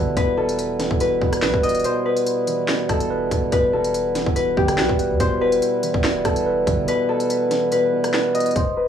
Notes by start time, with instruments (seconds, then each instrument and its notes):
Already playing: 808-style bass G1, tine electric piano B2 E3 B4, harmonium G3 B3 E4 B4, harp F#4 A4 B4
0.17 808-style bass E1, tine electric piano B2, harp B4, kick, closed hi-hat
0.37 tine electric piano B2, harp A4
0.49 closed hi-hat
0.59 closed hi-hat
0.80 tine electric piano E3, snare, closed hi-hat
0.91 808-style bass E1, kick
1.00 tine electric piano B2, harp B4, closed hi-hat
1.22 808-style bass E1, tine electric piano B2, kick
1.33 cross-stick, closed hi-hat
1.42 808-style bass B1, tine electric piano B4, snare, clap
1.54 808-style bass E1, kick
1.63 tine electric piano B2, harp D#5, closed hi-hat
1.69 closed hi-hat
1.75 closed hi-hat
1.80 closed hi-hat
1.84 tine electric piano B2, harp C5, closed hi-hat
2.05 tine electric piano B2, harp B4
2.17 closed hi-hat
2.27 closed hi-hat
2.47 tine electric piano E3, closed hi-hat
2.68 tine electric piano B2, snare, clap
2.89 808-style bass E1, tine electric piano B2, harp A4, kick, cross-stick, closed hi-hat
3.00 closed hi-hat
3.10 tine electric piano B4
3.31 808-style bass E1, tine electric piano B2, kick, closed hi-hat
3.52 808-style bass E1, tine electric piano B2, harp B4, kick, closed hi-hat
3.73 tine electric piano B2, harp A4
3.84 closed hi-hat
3.94 closed hi-hat
4.15 tine electric piano E3, snare, closed hi-hat
4.26 808-style bass E1, kick
4.36 tine electric piano B2, harp B4, closed hi-hat
4.57 808-style bass G1, tine electric piano B2, harp G4, kick
4.68 cross-stick, closed hi-hat
4.78 808-style bass B1, harp F#4, tine electric piano B4, snare, clap
4.89 808-style bass E1, kick
4.99 tine electric piano B2, closed hi-hat
5.10 808-style bass E2
5.20 808-style bass E1, tine electric piano B2, harmonium B3 E4 B4, harp C5, kick, closed hi-hat
5.41 tine electric piano B2, harp B4
5.52 closed hi-hat
5.62 closed hi-hat
5.83 tine electric piano E3, closed hi-hat
5.94 808-style bass E1, kick
6.04 tine electric piano B2, snare, clap
6.25 808-style bass E1, tine electric piano B2, harp A4, kick, cross-stick, closed hi-hat
6.36 closed hi-hat
6.46 tine electric piano B4
6.67 808-style bass G1, tine electric piano B2, kick, closed hi-hat
6.88 tine electric piano B2, harp B4, closed hi-hat
7.09 tine electric piano B2, harp A4
7.20 closed hi-hat
7.30 closed hi-hat
7.51 tine electric piano E3, snare, closed hi-hat
7.72 tine electric piano B2, harp B4, closed hi-hat
7.93 tine electric piano B2
8.04 cross-stick, closed hi-hat
8.13 tine electric piano B4, snare, clap
8.34 tine electric piano B2, harp D#5, closed hi-hat
8.40 closed hi-hat
8.46 closed hi-hat
8.51 closed hi-hat
8.56 808-style bass E1, harp C5, kick, closed hi-hat
8.77 harp B4